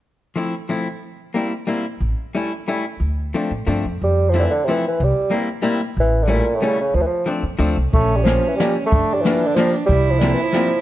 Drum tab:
HH |------|------|------|------|
SD |------|------|------|------|
BD |------|------|------|------|

HH |------|------|------|------|
SD |------|------|------|------|
BD |------|------|------|------|

HH |x-x-x-|x-x-x-|x-x-x-|
SD |--o-o-|--o-o-|--o-o-|
BD |o-----|o-----|o-----|